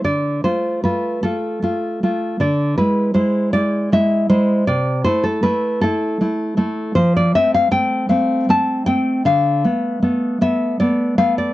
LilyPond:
\new Staff \with { instrumentName = "Nylon-string guitar" } { \time 6/8 \key a \minor \tempo 4. = 52 << { d''8 c''8 b'8 a'4. | d''8 b'8 c''8 d''8 e''8 c''8 | d''8 c''16 a'16 b'8 a'4. | c''16 d''16 e''16 f''16 g''8 f''8 a''8 g''8 |
f''4. e''8 d''8 f''16 d''16 | } \\ { d8 <a f'>8 <a f'>8 <a f'>8 <a f'>8 <a f'>8 | d8 <gis e'>8 <gis e'>8 <gis e'>8 <gis e'>8 <gis e'>8 | c8 <a e'>8 <a e'>8 <a e'>8 <a e'>8 <a e'>8 | f8 <a c'>8 <a c'>8 <a c'>8 <a c'>8 <a c'>8 |
d8 <a b>8 <a b>8 <a b>8 <a b>8 <a b>8 | } >> }